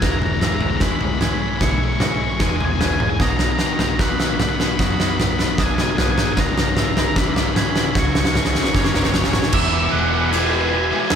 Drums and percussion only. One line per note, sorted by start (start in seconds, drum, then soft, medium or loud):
0.02 kick loud
0.02 snare medium
0.02 floor tom medium
0.22 floor tom medium
0.41 snare medium
0.41 mid tom medium
0.61 floor tom medium
0.80 kick loud
0.80 snare medium
1.01 floor tom medium
1.21 snare medium
1.21 floor tom medium
1.21 mid tom medium
1.61 kick loud
1.61 snare medium
1.61 floor tom medium
2.00 snare medium
2.00 floor tom medium
2.00 mid tom medium
2.40 kick loud
2.40 snare medium
2.61 floor tom medium
2.81 snare medium
2.81 floor tom medium
3.00 mid tom medium
3.20 kick loud
3.20 snare medium
3.20 floor tom medium
3.39 snare medium
3.39 floor tom medium
3.59 snare medium
3.79 snare medium
3.79 floor tom medium
3.99 kick loud
3.99 snare loud
4.20 snare loud
4.40 snare loud
4.40 floor tom medium
4.40 mid tom medium
4.60 snare medium
4.79 kick loud
4.79 snare medium
4.79 floor tom medium
5.00 snare loud
5.20 snare loud
5.20 floor tom medium
5.20 mid tom medium
5.39 snare medium
5.58 kick loud
5.58 snare loud
5.78 snare medium
5.78 floor tom medium
5.98 snare loud
5.98 floor tom medium
6.18 snare loud
6.18 mid tom medium
6.37 kick loud
6.37 snare loud
6.37 floor tom medium
6.58 snare loud
6.58 floor tom medium
6.77 snare loud
6.77 mid tom medium
6.97 snare loud
6.97 floor tom medium
7.16 kick loud
7.16 snare loud
7.36 snare loud
7.36 floor tom medium
7.56 snare loud
7.56 floor tom medium
7.56 mid tom medium
7.76 snare loud
7.95 kick loud
7.95 snare loud
7.95 floor tom medium
8.15 snare loud
8.25 snare loud
8.35 snare loud
8.35 floor tom medium
8.35 mid tom medium
8.45 snare loud
8.55 snare loud
8.64 snare loud
8.75 kick loud
8.75 snare loud
8.84 snare loud
8.94 snare loud
8.94 floor tom medium
9.04 snare loud
9.14 snare loud
9.14 floor tom medium
9.24 snare loud
9.33 snare loud
9.33 mid tom medium
9.43 snare loud
9.52 kick loud
9.52 crash loud
9.52 crash medium
10.33 crash medium
11.10 snare loud
11.10 crash medium